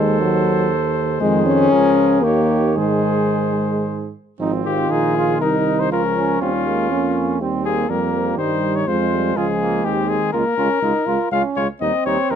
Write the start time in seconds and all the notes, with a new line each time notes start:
Already playing: D#2 D#3 G#3 A4 C5
0.21 F#3
1.21 F2 D#3 G#3 G#4
1.46 C#4
1.72 C#2 F3 A#4
2.23 D#2 D#3 A#3 G4 C#5
2.77 G#2 G#3 G#4 C5
4.40 G#1 F3 C4 D#4
4.65 D#3 F4 G4
4.91 A#1 D#4 G#4
5.15 F4
5.41 C2 D#4 A#4
5.80 C5
5.91 C#2 F3 C#4 F4 A#4
6.17 C#4
6.41 D#2 G3 C4 F4
6.66 G#3 A#3
6.91 F2 A#3 C#4
7.41 D#2 G3 C4
7.65 A#3 G#4
7.89 F2 G3 A#3 A#4
8.13 F3
8.38 G2 D#3 D#4 C5
8.76 C#5
8.87 F2 G#3 F4 C5
9.12 G3
9.36 C#2 F3 F4 G#4
9.61 A#3
9.85 D#2 D#3 C4 G4
10.09 G#4
10.33 C#2 G#3 A#3 F4 A#4
10.57 C#2 G#3 C#4 F4
10.82 C#2 G#3 D#4 F4
11.06 C#2 G#3 F4
11.31 C#2 G#3 C#4 F4 F5
11.56 C#2 G#3 F4 C#5
11.81 D#2 G3 C4 D#4 D#5
12.06 D#2 G3 D#4 C#5
12.30 D#2 G3 D#4 A#4